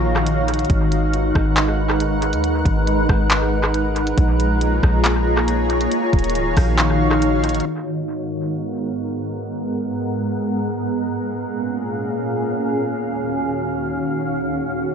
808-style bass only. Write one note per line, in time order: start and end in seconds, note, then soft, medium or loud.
0.00 0.66 A#1 loud
0.70 1.32 G#1 loud
1.35 2.34 G#1 loud
2.33 2.64 D#2 loud
2.65 3.07 G#1 loud
3.09 4.14 G#1 loud
4.18 4.80 A#1 loud
4.83 5.88 A#1 loud
6.13 6.36 D#1 loud
6.35 6.47 C#1 loud
6.46 6.56 D#1 loud
6.57 7.62 A#1 loud